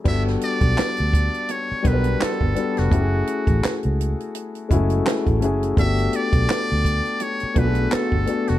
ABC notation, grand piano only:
X:1
M:4/4
L:1/8
Q:"Swing 16ths" 1/4=84
K:Glyd
V:1 name="Grand piano"
[G,B,DFA]3 z2 [G,B,DF^AB]2 [G,B,DF=A] | [A,CEFG^G]3 z2 [^G,A,CEFG]2 [A,CEFG] | [A,B,DFG]3 z2 [A,B,DF^GA]2 [A,B,DFA] |]